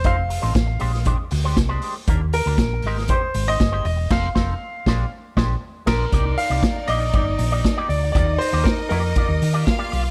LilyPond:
<<
  \new Staff \with { instrumentName = "Grand piano" } { \time 4/4 \key ees \major \tempo 4 = 119 f''2 r2 | r8 bes'4. c''8. ees''8. ees''8 | f''2 r4. bes'8~ | bes'8 f''4 ees''2 d''8 |
d''8 c''8 bes'8 bes'2 r8 | }
  \new Staff \with { instrumentName = "String section" } { \time 4/4 \key ees \major r1 | r1 | r1 | <ees' d''>1 |
<ees' ees''>2. <f' f''>4 | }
  \new Staff \with { instrumentName = "Clean electric guitar" } { \time 4/4 \key ees \major <c' ees' a' c''>16 r8 <c' ees' a' c''>16 r8 <aes d' g' c''>16 r16 <aes d' g' c''>16 r8 <aes d' g' c''>16 r16 <aes d' g' c''>16 <aes d' g' c''>16 r16 | <bes d' g' bes'>16 r8 <bes d' g' bes'>16 r8 <aes ees' g' c''>16 r16 <aes ees' g' c''>16 r8 <aes ees' g' c''>16 r16 <aes ees' g' c''>16 r8 | <c' ees' a' c''>8 <c' ees' a' c''>8 r8 <aes d' g' c''>8 r8 <aes d' g' c''>8 r8 <aes d' g' c''>8 | <bes ees' g' d''>16 r8 <bes ees' g' d''>16 r8 <bes ees' g' d''>16 r16 <bes ees' g' d''>16 r8 <bes ees' g' d''>16 r16 <bes ees' g' d''>16 r8 |
<bes f' g' d''>16 r8 <bes f' g' d''>16 r8 <bes f' g' d''>8 <bes f' g' d''>16 r8 <bes f' g' d''>16 r16 <bes f' g' d''>16 <bes f' g' d''>16 r16 | }
  \new Staff \with { instrumentName = "Fingered electric bass" } { \clef bass \time 4/4 \key ees \major f,,8. a,,16 a,,8 bes,,8. r16 d,8 c,8 r8 | ees,8. d,16 bes,,8 aes,,8. r16 aes,,8 g,,8 fes,,8 | f,,8 f,,8 r8 bes,,8 r8 bes,,8 r8 bes,,8 | c,8 r16 c,16 r8 bes,,8 g,,8 bes,,8 r8 d,8 |
ees,8 r16 ees,16 r8 f,8 r16 ees,16 ees8 r8 ces,8 | }
  \new DrumStaff \with { instrumentName = "Drums" } \drummode { \time 4/4 <hh bd>8 hho8 <hh bd sn>8 hho16 sn16 <hh bd>8 hho8 <hh bd sn>8 hho8 | <hh bd>8 hho8 <hh bd sn>8 hho16 sn16 <hh bd>8 hho8 <hh bd sn>8 hho8 | <cymc bd sn>8 <bd sn>8 r8 <bd sn>8 r8 <bd sn>8 r8 <cymc bd sn>8 | <hh bd>8 hho8 <hh bd sn>8 hho8 <hh bd>8 hho8 <hh bd sn>8 hho8 |
<hh bd>8 hho8 <hh bd sn>8 hho8 <hh bd>8 hho8 <hh bd sn>8 hho8 | }
>>